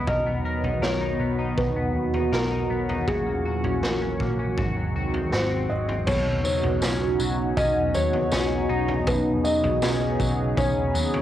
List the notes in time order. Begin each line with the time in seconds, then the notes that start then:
Already playing: C#3 B3 E4
0.07 B1 B2 D#3 F#3 B3 F#4 A#4 D#5, kick, floor tom
0.27 B3
0.45 A#4
0.63 B1 D#4, floor tom
0.82 B1 A#4 C#5, snare
1.01 D#4
1.20 B1 B3
1.39 D#4
1.58 B1 B2 B4, kick, floor tom
1.76 B3
1.95 D#2
2.14 D#4, floor tom
2.32 B1 A#4, snare
2.51 D#4
2.70 B1 B3
2.89 D#4, floor tom
3.07 A#1 A#2 E3 C#4 F#4 G#4, kick, floor tom
3.26 A#3
3.45 F#4
3.64 A#1 C#4, floor tom
3.82 A#1 F#4 A#4, snare
4.01 C#4
4.20 A#1 A#3, kick
4.39 C#4
4.58 G#1 G#2 D#3 G#3 C4 F#4, kick, floor tom
4.77 F#3
4.95 C2 F#4
5.14 C4, floor tom
5.32 G#1 F#4 C5, snare
5.51 C4
5.69 G#1 F#3 D#5
5.89 C4, floor tom
6.07 B1 B2 C#3 F#3 B3 D#4 F#4 C#5, kick, floor tom, crash, tambourine
6.44 F#3 C#5, tambourine
6.63 B1, floor tom
6.82 B1 C#4, snare, tambourine
7.20 B1 F#3, tambourine
7.57 B1 C#4 D#5, kick, floor tom, tambourine
7.94 D#2 F#3 C#5, tambourine
8.13 floor tom
8.31 B1 C#4, snare, tambourine
8.69 B1 D#4
8.88 floor tom
9.07 B1 B2 G#4 B4, kick, floor tom, tambourine
9.44 F#3 D#5, tambourine
9.63 B1, floor tom
9.82 B1 C#4, snare, tambourine
10.20 B1 F#3, kick, tambourine
10.57 B1 C#4 C#5, kick, floor tom, tambourine
10.94 D#2 F#3, tambourine
11.14 floor tom